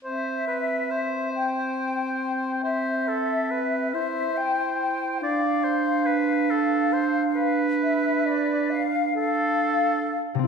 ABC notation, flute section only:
X:1
M:6/8
L:1/8
Q:3/8=46
K:C
V:1 name="Flute section"
e3 g3 | e3 e g g | f6 | e d f f2 z |]